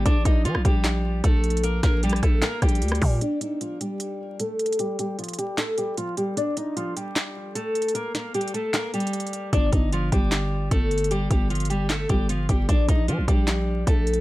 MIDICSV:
0, 0, Header, 1, 4, 480
1, 0, Start_track
1, 0, Key_signature, -2, "minor"
1, 0, Tempo, 394737
1, 68, Time_signature, 4, 2, 24, 8
1, 17274, End_track
2, 0, Start_track
2, 0, Title_t, "Steel-string acoustic guitar"
2, 0, Program_c, 0, 25
2, 66, Note_on_c, 0, 62, 103
2, 75, Note_on_c, 0, 74, 84
2, 266, Note_off_c, 0, 62, 0
2, 271, Note_off_c, 0, 74, 0
2, 308, Note_on_c, 0, 63, 88
2, 318, Note_on_c, 0, 75, 63
2, 508, Note_off_c, 0, 63, 0
2, 513, Note_off_c, 0, 75, 0
2, 546, Note_on_c, 0, 65, 83
2, 556, Note_on_c, 0, 53, 72
2, 747, Note_off_c, 0, 65, 0
2, 752, Note_off_c, 0, 53, 0
2, 790, Note_on_c, 0, 67, 83
2, 801, Note_on_c, 0, 55, 65
2, 1466, Note_off_c, 0, 67, 0
2, 1471, Note_off_c, 0, 55, 0
2, 1504, Note_on_c, 0, 69, 92
2, 1514, Note_on_c, 0, 57, 70
2, 1957, Note_off_c, 0, 69, 0
2, 1962, Note_off_c, 0, 57, 0
2, 1987, Note_on_c, 0, 70, 92
2, 1997, Note_on_c, 0, 58, 60
2, 2187, Note_off_c, 0, 70, 0
2, 2193, Note_off_c, 0, 58, 0
2, 2234, Note_on_c, 0, 70, 83
2, 2243, Note_on_c, 0, 58, 63
2, 2431, Note_off_c, 0, 70, 0
2, 2436, Note_off_c, 0, 58, 0
2, 2472, Note_on_c, 0, 67, 81
2, 2483, Note_on_c, 0, 55, 67
2, 2670, Note_off_c, 0, 67, 0
2, 2676, Note_off_c, 0, 55, 0
2, 2707, Note_on_c, 0, 69, 80
2, 2717, Note_on_c, 0, 57, 65
2, 2907, Note_off_c, 0, 69, 0
2, 2913, Note_off_c, 0, 57, 0
2, 2946, Note_on_c, 0, 70, 92
2, 2956, Note_on_c, 0, 58, 79
2, 3146, Note_off_c, 0, 70, 0
2, 3152, Note_off_c, 0, 58, 0
2, 3190, Note_on_c, 0, 67, 89
2, 3199, Note_on_c, 0, 55, 64
2, 3866, Note_off_c, 0, 67, 0
2, 3871, Note_off_c, 0, 55, 0
2, 3910, Note_on_c, 0, 62, 99
2, 3919, Note_on_c, 0, 74, 73
2, 4108, Note_off_c, 0, 62, 0
2, 4114, Note_off_c, 0, 74, 0
2, 4145, Note_on_c, 0, 63, 79
2, 4155, Note_on_c, 0, 75, 61
2, 4346, Note_off_c, 0, 63, 0
2, 4352, Note_off_c, 0, 75, 0
2, 4391, Note_on_c, 0, 65, 81
2, 4401, Note_on_c, 0, 53, 60
2, 4589, Note_off_c, 0, 65, 0
2, 4595, Note_off_c, 0, 53, 0
2, 4628, Note_on_c, 0, 67, 76
2, 4637, Note_on_c, 0, 55, 61
2, 5304, Note_off_c, 0, 67, 0
2, 5309, Note_off_c, 0, 55, 0
2, 5347, Note_on_c, 0, 69, 89
2, 5358, Note_on_c, 0, 57, 63
2, 5799, Note_off_c, 0, 69, 0
2, 5804, Note_off_c, 0, 57, 0
2, 5828, Note_on_c, 0, 67, 82
2, 5837, Note_on_c, 0, 55, 68
2, 6027, Note_off_c, 0, 67, 0
2, 6033, Note_off_c, 0, 55, 0
2, 6071, Note_on_c, 0, 67, 85
2, 6080, Note_on_c, 0, 55, 57
2, 6269, Note_off_c, 0, 67, 0
2, 6275, Note_off_c, 0, 55, 0
2, 6306, Note_on_c, 0, 65, 77
2, 6316, Note_on_c, 0, 53, 57
2, 6506, Note_off_c, 0, 65, 0
2, 6512, Note_off_c, 0, 53, 0
2, 6546, Note_on_c, 0, 67, 83
2, 6555, Note_on_c, 0, 55, 63
2, 6747, Note_off_c, 0, 67, 0
2, 6752, Note_off_c, 0, 55, 0
2, 6787, Note_on_c, 0, 69, 90
2, 6796, Note_on_c, 0, 57, 68
2, 6987, Note_off_c, 0, 69, 0
2, 6992, Note_off_c, 0, 57, 0
2, 7029, Note_on_c, 0, 67, 91
2, 7038, Note_on_c, 0, 55, 61
2, 7228, Note_off_c, 0, 67, 0
2, 7234, Note_off_c, 0, 55, 0
2, 7268, Note_on_c, 0, 65, 82
2, 7278, Note_on_c, 0, 53, 67
2, 7468, Note_off_c, 0, 65, 0
2, 7474, Note_off_c, 0, 53, 0
2, 7508, Note_on_c, 0, 67, 74
2, 7518, Note_on_c, 0, 55, 65
2, 7707, Note_off_c, 0, 67, 0
2, 7713, Note_off_c, 0, 55, 0
2, 7746, Note_on_c, 0, 62, 97
2, 7755, Note_on_c, 0, 74, 81
2, 7946, Note_off_c, 0, 62, 0
2, 7952, Note_off_c, 0, 74, 0
2, 7989, Note_on_c, 0, 63, 82
2, 7998, Note_on_c, 0, 75, 58
2, 8188, Note_off_c, 0, 63, 0
2, 8193, Note_off_c, 0, 75, 0
2, 8226, Note_on_c, 0, 65, 82
2, 8236, Note_on_c, 0, 53, 67
2, 8426, Note_off_c, 0, 65, 0
2, 8432, Note_off_c, 0, 53, 0
2, 8467, Note_on_c, 0, 67, 77
2, 8478, Note_on_c, 0, 55, 62
2, 9144, Note_off_c, 0, 67, 0
2, 9150, Note_off_c, 0, 55, 0
2, 9184, Note_on_c, 0, 69, 85
2, 9193, Note_on_c, 0, 57, 68
2, 9637, Note_off_c, 0, 69, 0
2, 9642, Note_off_c, 0, 57, 0
2, 9664, Note_on_c, 0, 70, 89
2, 9673, Note_on_c, 0, 58, 61
2, 9865, Note_off_c, 0, 70, 0
2, 9871, Note_off_c, 0, 58, 0
2, 9913, Note_on_c, 0, 70, 76
2, 9923, Note_on_c, 0, 58, 63
2, 10111, Note_off_c, 0, 70, 0
2, 10116, Note_off_c, 0, 58, 0
2, 10149, Note_on_c, 0, 67, 78
2, 10159, Note_on_c, 0, 55, 64
2, 10348, Note_off_c, 0, 67, 0
2, 10354, Note_off_c, 0, 55, 0
2, 10384, Note_on_c, 0, 69, 79
2, 10393, Note_on_c, 0, 57, 63
2, 10585, Note_off_c, 0, 69, 0
2, 10590, Note_off_c, 0, 57, 0
2, 10624, Note_on_c, 0, 70, 86
2, 10633, Note_on_c, 0, 58, 75
2, 10825, Note_off_c, 0, 70, 0
2, 10830, Note_off_c, 0, 58, 0
2, 10867, Note_on_c, 0, 67, 83
2, 10877, Note_on_c, 0, 55, 61
2, 11544, Note_off_c, 0, 67, 0
2, 11549, Note_off_c, 0, 55, 0
2, 11587, Note_on_c, 0, 62, 101
2, 11597, Note_on_c, 0, 74, 80
2, 11787, Note_off_c, 0, 62, 0
2, 11793, Note_off_c, 0, 74, 0
2, 11821, Note_on_c, 0, 63, 81
2, 11831, Note_on_c, 0, 75, 63
2, 12023, Note_off_c, 0, 63, 0
2, 12029, Note_off_c, 0, 75, 0
2, 12070, Note_on_c, 0, 65, 86
2, 12080, Note_on_c, 0, 53, 64
2, 12269, Note_off_c, 0, 65, 0
2, 12275, Note_off_c, 0, 53, 0
2, 12307, Note_on_c, 0, 67, 77
2, 12317, Note_on_c, 0, 55, 64
2, 12984, Note_off_c, 0, 67, 0
2, 12989, Note_off_c, 0, 55, 0
2, 13028, Note_on_c, 0, 69, 91
2, 13037, Note_on_c, 0, 57, 63
2, 13479, Note_off_c, 0, 69, 0
2, 13484, Note_off_c, 0, 57, 0
2, 13508, Note_on_c, 0, 67, 87
2, 13518, Note_on_c, 0, 55, 73
2, 13707, Note_off_c, 0, 67, 0
2, 13713, Note_off_c, 0, 55, 0
2, 13752, Note_on_c, 0, 67, 85
2, 13762, Note_on_c, 0, 55, 57
2, 13950, Note_off_c, 0, 67, 0
2, 13955, Note_off_c, 0, 55, 0
2, 13987, Note_on_c, 0, 65, 79
2, 13997, Note_on_c, 0, 53, 60
2, 14187, Note_off_c, 0, 65, 0
2, 14193, Note_off_c, 0, 53, 0
2, 14224, Note_on_c, 0, 67, 88
2, 14233, Note_on_c, 0, 55, 62
2, 14425, Note_off_c, 0, 67, 0
2, 14431, Note_off_c, 0, 55, 0
2, 14468, Note_on_c, 0, 69, 91
2, 14478, Note_on_c, 0, 57, 70
2, 14668, Note_off_c, 0, 69, 0
2, 14673, Note_off_c, 0, 57, 0
2, 14710, Note_on_c, 0, 67, 91
2, 14720, Note_on_c, 0, 55, 62
2, 14909, Note_off_c, 0, 67, 0
2, 14914, Note_off_c, 0, 55, 0
2, 14949, Note_on_c, 0, 65, 84
2, 14958, Note_on_c, 0, 53, 69
2, 15148, Note_off_c, 0, 65, 0
2, 15154, Note_off_c, 0, 53, 0
2, 15190, Note_on_c, 0, 67, 75
2, 15200, Note_on_c, 0, 55, 63
2, 15389, Note_off_c, 0, 67, 0
2, 15394, Note_off_c, 0, 55, 0
2, 15426, Note_on_c, 0, 62, 99
2, 15436, Note_on_c, 0, 74, 83
2, 15626, Note_off_c, 0, 62, 0
2, 15632, Note_off_c, 0, 74, 0
2, 15669, Note_on_c, 0, 63, 84
2, 15679, Note_on_c, 0, 75, 61
2, 15868, Note_off_c, 0, 63, 0
2, 15874, Note_off_c, 0, 75, 0
2, 15907, Note_on_c, 0, 65, 83
2, 15918, Note_on_c, 0, 53, 69
2, 16107, Note_off_c, 0, 65, 0
2, 16113, Note_off_c, 0, 53, 0
2, 16149, Note_on_c, 0, 67, 78
2, 16158, Note_on_c, 0, 55, 65
2, 16825, Note_off_c, 0, 67, 0
2, 16830, Note_off_c, 0, 55, 0
2, 16864, Note_on_c, 0, 69, 87
2, 16874, Note_on_c, 0, 57, 73
2, 17274, Note_off_c, 0, 57, 0
2, 17274, Note_off_c, 0, 69, 0
2, 17274, End_track
3, 0, Start_track
3, 0, Title_t, "808-style bass"
3, 0, Program_c, 1, 38
3, 67, Note_on_c, 1, 34, 115
3, 298, Note_off_c, 1, 34, 0
3, 308, Note_on_c, 1, 34, 107
3, 548, Note_on_c, 1, 53, 104
3, 567, Note_off_c, 1, 34, 0
3, 668, Note_on_c, 1, 34, 103
3, 686, Note_off_c, 1, 53, 0
3, 782, Note_off_c, 1, 34, 0
3, 789, Note_on_c, 1, 34, 104
3, 1480, Note_off_c, 1, 34, 0
3, 1507, Note_on_c, 1, 34, 110
3, 2198, Note_off_c, 1, 34, 0
3, 2228, Note_on_c, 1, 34, 105
3, 2688, Note_off_c, 1, 34, 0
3, 2709, Note_on_c, 1, 34, 107
3, 2939, Note_off_c, 1, 34, 0
3, 3187, Note_on_c, 1, 34, 107
3, 3427, Note_on_c, 1, 38, 100
3, 3445, Note_off_c, 1, 34, 0
3, 3655, Note_off_c, 1, 38, 0
3, 3668, Note_on_c, 1, 46, 106
3, 3898, Note_off_c, 1, 46, 0
3, 11587, Note_on_c, 1, 31, 112
3, 11818, Note_off_c, 1, 31, 0
3, 11827, Note_on_c, 1, 31, 105
3, 12288, Note_off_c, 1, 31, 0
3, 12309, Note_on_c, 1, 31, 102
3, 12999, Note_off_c, 1, 31, 0
3, 13027, Note_on_c, 1, 31, 109
3, 13718, Note_off_c, 1, 31, 0
3, 13748, Note_on_c, 1, 31, 106
3, 14669, Note_off_c, 1, 31, 0
3, 14709, Note_on_c, 1, 31, 104
3, 15169, Note_off_c, 1, 31, 0
3, 15188, Note_on_c, 1, 31, 104
3, 15418, Note_off_c, 1, 31, 0
3, 15428, Note_on_c, 1, 34, 113
3, 15658, Note_off_c, 1, 34, 0
3, 15668, Note_on_c, 1, 34, 105
3, 15908, Note_on_c, 1, 53, 103
3, 15926, Note_off_c, 1, 34, 0
3, 16028, Note_on_c, 1, 34, 98
3, 16046, Note_off_c, 1, 53, 0
3, 16142, Note_off_c, 1, 34, 0
3, 16149, Note_on_c, 1, 34, 107
3, 16839, Note_off_c, 1, 34, 0
3, 16867, Note_on_c, 1, 34, 108
3, 17274, Note_off_c, 1, 34, 0
3, 17274, End_track
4, 0, Start_track
4, 0, Title_t, "Drums"
4, 68, Note_on_c, 9, 36, 115
4, 68, Note_on_c, 9, 42, 85
4, 189, Note_off_c, 9, 36, 0
4, 190, Note_off_c, 9, 42, 0
4, 308, Note_on_c, 9, 36, 98
4, 308, Note_on_c, 9, 42, 84
4, 429, Note_off_c, 9, 36, 0
4, 429, Note_off_c, 9, 42, 0
4, 549, Note_on_c, 9, 42, 72
4, 666, Note_on_c, 9, 37, 101
4, 671, Note_off_c, 9, 42, 0
4, 788, Note_off_c, 9, 37, 0
4, 789, Note_on_c, 9, 36, 100
4, 791, Note_on_c, 9, 42, 79
4, 910, Note_off_c, 9, 36, 0
4, 913, Note_off_c, 9, 42, 0
4, 1024, Note_on_c, 9, 42, 88
4, 1027, Note_on_c, 9, 38, 124
4, 1028, Note_on_c, 9, 39, 104
4, 1145, Note_off_c, 9, 42, 0
4, 1149, Note_off_c, 9, 38, 0
4, 1150, Note_off_c, 9, 39, 0
4, 1506, Note_on_c, 9, 42, 91
4, 1507, Note_on_c, 9, 36, 107
4, 1628, Note_off_c, 9, 36, 0
4, 1628, Note_off_c, 9, 42, 0
4, 1747, Note_on_c, 9, 42, 62
4, 1828, Note_off_c, 9, 42, 0
4, 1828, Note_on_c, 9, 42, 61
4, 1908, Note_off_c, 9, 42, 0
4, 1908, Note_on_c, 9, 42, 66
4, 1988, Note_off_c, 9, 42, 0
4, 1988, Note_on_c, 9, 42, 89
4, 2109, Note_off_c, 9, 42, 0
4, 2227, Note_on_c, 9, 36, 96
4, 2227, Note_on_c, 9, 38, 70
4, 2227, Note_on_c, 9, 42, 84
4, 2349, Note_off_c, 9, 36, 0
4, 2349, Note_off_c, 9, 38, 0
4, 2349, Note_off_c, 9, 42, 0
4, 2468, Note_on_c, 9, 42, 61
4, 2547, Note_off_c, 9, 42, 0
4, 2547, Note_on_c, 9, 42, 61
4, 2586, Note_on_c, 9, 37, 102
4, 2628, Note_off_c, 9, 42, 0
4, 2628, Note_on_c, 9, 42, 59
4, 2708, Note_off_c, 9, 37, 0
4, 2708, Note_on_c, 9, 37, 74
4, 2709, Note_on_c, 9, 36, 100
4, 2711, Note_off_c, 9, 42, 0
4, 2711, Note_on_c, 9, 42, 77
4, 2830, Note_off_c, 9, 36, 0
4, 2830, Note_off_c, 9, 37, 0
4, 2832, Note_off_c, 9, 42, 0
4, 2944, Note_on_c, 9, 42, 89
4, 2947, Note_on_c, 9, 38, 123
4, 2948, Note_on_c, 9, 39, 103
4, 3065, Note_off_c, 9, 42, 0
4, 3068, Note_off_c, 9, 38, 0
4, 3069, Note_off_c, 9, 39, 0
4, 3187, Note_on_c, 9, 36, 98
4, 3187, Note_on_c, 9, 42, 65
4, 3188, Note_on_c, 9, 37, 76
4, 3267, Note_off_c, 9, 42, 0
4, 3267, Note_on_c, 9, 42, 65
4, 3309, Note_off_c, 9, 36, 0
4, 3309, Note_off_c, 9, 37, 0
4, 3347, Note_off_c, 9, 42, 0
4, 3347, Note_on_c, 9, 42, 60
4, 3427, Note_off_c, 9, 42, 0
4, 3427, Note_on_c, 9, 42, 87
4, 3507, Note_off_c, 9, 42, 0
4, 3507, Note_on_c, 9, 42, 70
4, 3547, Note_on_c, 9, 37, 109
4, 3587, Note_off_c, 9, 42, 0
4, 3587, Note_on_c, 9, 42, 51
4, 3667, Note_on_c, 9, 36, 88
4, 3667, Note_on_c, 9, 46, 81
4, 3669, Note_off_c, 9, 37, 0
4, 3708, Note_off_c, 9, 42, 0
4, 3789, Note_off_c, 9, 36, 0
4, 3789, Note_off_c, 9, 46, 0
4, 3907, Note_on_c, 9, 42, 84
4, 4029, Note_off_c, 9, 42, 0
4, 4148, Note_on_c, 9, 42, 79
4, 4269, Note_off_c, 9, 42, 0
4, 4389, Note_on_c, 9, 42, 65
4, 4510, Note_off_c, 9, 42, 0
4, 4630, Note_on_c, 9, 42, 76
4, 4752, Note_off_c, 9, 42, 0
4, 4863, Note_on_c, 9, 42, 86
4, 4985, Note_off_c, 9, 42, 0
4, 5345, Note_on_c, 9, 42, 87
4, 5467, Note_off_c, 9, 42, 0
4, 5587, Note_on_c, 9, 42, 59
4, 5666, Note_off_c, 9, 42, 0
4, 5666, Note_on_c, 9, 42, 59
4, 5746, Note_off_c, 9, 42, 0
4, 5746, Note_on_c, 9, 42, 62
4, 5827, Note_off_c, 9, 42, 0
4, 5827, Note_on_c, 9, 42, 81
4, 5948, Note_off_c, 9, 42, 0
4, 6067, Note_on_c, 9, 42, 80
4, 6188, Note_off_c, 9, 42, 0
4, 6307, Note_on_c, 9, 42, 40
4, 6367, Note_off_c, 9, 42, 0
4, 6367, Note_on_c, 9, 42, 50
4, 6426, Note_off_c, 9, 42, 0
4, 6426, Note_on_c, 9, 42, 60
4, 6487, Note_off_c, 9, 42, 0
4, 6487, Note_on_c, 9, 42, 70
4, 6549, Note_off_c, 9, 42, 0
4, 6549, Note_on_c, 9, 42, 74
4, 6671, Note_off_c, 9, 42, 0
4, 6782, Note_on_c, 9, 42, 83
4, 6785, Note_on_c, 9, 38, 119
4, 6786, Note_on_c, 9, 39, 94
4, 6904, Note_off_c, 9, 42, 0
4, 6907, Note_off_c, 9, 38, 0
4, 6908, Note_off_c, 9, 39, 0
4, 7024, Note_on_c, 9, 42, 70
4, 7146, Note_off_c, 9, 42, 0
4, 7265, Note_on_c, 9, 42, 81
4, 7387, Note_off_c, 9, 42, 0
4, 7507, Note_on_c, 9, 42, 74
4, 7628, Note_off_c, 9, 42, 0
4, 7747, Note_on_c, 9, 42, 83
4, 7869, Note_off_c, 9, 42, 0
4, 7988, Note_on_c, 9, 42, 80
4, 8109, Note_off_c, 9, 42, 0
4, 8229, Note_on_c, 9, 42, 65
4, 8351, Note_off_c, 9, 42, 0
4, 8471, Note_on_c, 9, 42, 75
4, 8592, Note_off_c, 9, 42, 0
4, 8704, Note_on_c, 9, 42, 87
4, 8707, Note_on_c, 9, 38, 119
4, 8708, Note_on_c, 9, 39, 96
4, 8826, Note_off_c, 9, 42, 0
4, 8829, Note_off_c, 9, 38, 0
4, 8830, Note_off_c, 9, 39, 0
4, 9186, Note_on_c, 9, 42, 88
4, 9308, Note_off_c, 9, 42, 0
4, 9428, Note_on_c, 9, 42, 60
4, 9508, Note_off_c, 9, 42, 0
4, 9508, Note_on_c, 9, 42, 59
4, 9588, Note_off_c, 9, 42, 0
4, 9588, Note_on_c, 9, 42, 64
4, 9667, Note_off_c, 9, 42, 0
4, 9667, Note_on_c, 9, 42, 84
4, 9789, Note_off_c, 9, 42, 0
4, 9908, Note_on_c, 9, 38, 68
4, 9908, Note_on_c, 9, 42, 79
4, 10029, Note_off_c, 9, 38, 0
4, 10029, Note_off_c, 9, 42, 0
4, 10147, Note_on_c, 9, 42, 57
4, 10227, Note_off_c, 9, 42, 0
4, 10227, Note_on_c, 9, 42, 54
4, 10307, Note_off_c, 9, 42, 0
4, 10307, Note_on_c, 9, 42, 57
4, 10390, Note_off_c, 9, 42, 0
4, 10390, Note_on_c, 9, 42, 76
4, 10512, Note_off_c, 9, 42, 0
4, 10623, Note_on_c, 9, 42, 86
4, 10626, Note_on_c, 9, 38, 122
4, 10627, Note_on_c, 9, 39, 96
4, 10744, Note_off_c, 9, 42, 0
4, 10747, Note_off_c, 9, 38, 0
4, 10749, Note_off_c, 9, 39, 0
4, 10866, Note_on_c, 9, 42, 61
4, 10947, Note_off_c, 9, 42, 0
4, 10947, Note_on_c, 9, 42, 59
4, 11027, Note_off_c, 9, 42, 0
4, 11027, Note_on_c, 9, 42, 60
4, 11106, Note_off_c, 9, 42, 0
4, 11106, Note_on_c, 9, 42, 84
4, 11186, Note_off_c, 9, 42, 0
4, 11186, Note_on_c, 9, 42, 65
4, 11267, Note_off_c, 9, 42, 0
4, 11267, Note_on_c, 9, 42, 48
4, 11347, Note_off_c, 9, 42, 0
4, 11347, Note_on_c, 9, 42, 76
4, 11469, Note_off_c, 9, 42, 0
4, 11587, Note_on_c, 9, 36, 111
4, 11587, Note_on_c, 9, 42, 86
4, 11708, Note_off_c, 9, 36, 0
4, 11709, Note_off_c, 9, 42, 0
4, 11827, Note_on_c, 9, 36, 96
4, 11827, Note_on_c, 9, 42, 78
4, 11949, Note_off_c, 9, 36, 0
4, 11949, Note_off_c, 9, 42, 0
4, 12069, Note_on_c, 9, 42, 68
4, 12191, Note_off_c, 9, 42, 0
4, 12308, Note_on_c, 9, 36, 96
4, 12310, Note_on_c, 9, 42, 76
4, 12430, Note_off_c, 9, 36, 0
4, 12432, Note_off_c, 9, 42, 0
4, 12543, Note_on_c, 9, 42, 88
4, 12546, Note_on_c, 9, 38, 125
4, 12547, Note_on_c, 9, 39, 98
4, 12665, Note_off_c, 9, 42, 0
4, 12668, Note_off_c, 9, 38, 0
4, 12669, Note_off_c, 9, 39, 0
4, 13027, Note_on_c, 9, 36, 106
4, 13027, Note_on_c, 9, 42, 89
4, 13148, Note_off_c, 9, 36, 0
4, 13148, Note_off_c, 9, 42, 0
4, 13268, Note_on_c, 9, 42, 60
4, 13348, Note_off_c, 9, 42, 0
4, 13348, Note_on_c, 9, 42, 60
4, 13428, Note_off_c, 9, 42, 0
4, 13428, Note_on_c, 9, 42, 66
4, 13508, Note_off_c, 9, 42, 0
4, 13508, Note_on_c, 9, 42, 86
4, 13630, Note_off_c, 9, 42, 0
4, 13748, Note_on_c, 9, 36, 96
4, 13748, Note_on_c, 9, 42, 80
4, 13870, Note_off_c, 9, 36, 0
4, 13870, Note_off_c, 9, 42, 0
4, 13989, Note_on_c, 9, 42, 41
4, 14048, Note_off_c, 9, 42, 0
4, 14048, Note_on_c, 9, 42, 52
4, 14108, Note_off_c, 9, 42, 0
4, 14108, Note_on_c, 9, 42, 61
4, 14168, Note_off_c, 9, 42, 0
4, 14168, Note_on_c, 9, 42, 69
4, 14232, Note_off_c, 9, 42, 0
4, 14232, Note_on_c, 9, 42, 76
4, 14354, Note_off_c, 9, 42, 0
4, 14464, Note_on_c, 9, 42, 89
4, 14467, Note_on_c, 9, 38, 124
4, 14469, Note_on_c, 9, 39, 99
4, 14586, Note_off_c, 9, 42, 0
4, 14589, Note_off_c, 9, 38, 0
4, 14590, Note_off_c, 9, 39, 0
4, 14706, Note_on_c, 9, 42, 72
4, 14708, Note_on_c, 9, 36, 95
4, 14827, Note_off_c, 9, 42, 0
4, 14830, Note_off_c, 9, 36, 0
4, 14947, Note_on_c, 9, 42, 83
4, 15069, Note_off_c, 9, 42, 0
4, 15188, Note_on_c, 9, 36, 81
4, 15188, Note_on_c, 9, 42, 76
4, 15309, Note_off_c, 9, 42, 0
4, 15310, Note_off_c, 9, 36, 0
4, 15428, Note_on_c, 9, 36, 113
4, 15429, Note_on_c, 9, 42, 85
4, 15550, Note_off_c, 9, 36, 0
4, 15550, Note_off_c, 9, 42, 0
4, 15668, Note_on_c, 9, 36, 93
4, 15669, Note_on_c, 9, 42, 81
4, 15790, Note_off_c, 9, 36, 0
4, 15790, Note_off_c, 9, 42, 0
4, 15910, Note_on_c, 9, 42, 68
4, 16032, Note_off_c, 9, 42, 0
4, 16149, Note_on_c, 9, 36, 94
4, 16151, Note_on_c, 9, 42, 74
4, 16270, Note_off_c, 9, 36, 0
4, 16273, Note_off_c, 9, 42, 0
4, 16384, Note_on_c, 9, 42, 87
4, 16387, Note_on_c, 9, 38, 122
4, 16389, Note_on_c, 9, 39, 98
4, 16506, Note_off_c, 9, 42, 0
4, 16509, Note_off_c, 9, 38, 0
4, 16510, Note_off_c, 9, 39, 0
4, 16867, Note_on_c, 9, 36, 102
4, 16867, Note_on_c, 9, 42, 91
4, 16989, Note_off_c, 9, 36, 0
4, 16989, Note_off_c, 9, 42, 0
4, 17108, Note_on_c, 9, 42, 58
4, 17188, Note_off_c, 9, 42, 0
4, 17188, Note_on_c, 9, 42, 62
4, 17274, Note_off_c, 9, 42, 0
4, 17274, End_track
0, 0, End_of_file